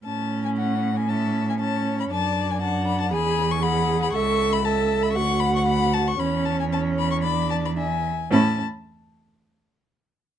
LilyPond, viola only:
\new Staff \with { instrumentName = "Viola" } { \time 4/4 \key a \major \tempo 4 = 116 cis'2 cis'4 cis'4 | d'4 d'4 gis'4 gis'4 | a'4 a'4 fis'2 | cis'4 cis'4 d'4 d'8 r8 |
cis'8 r2. r8 | }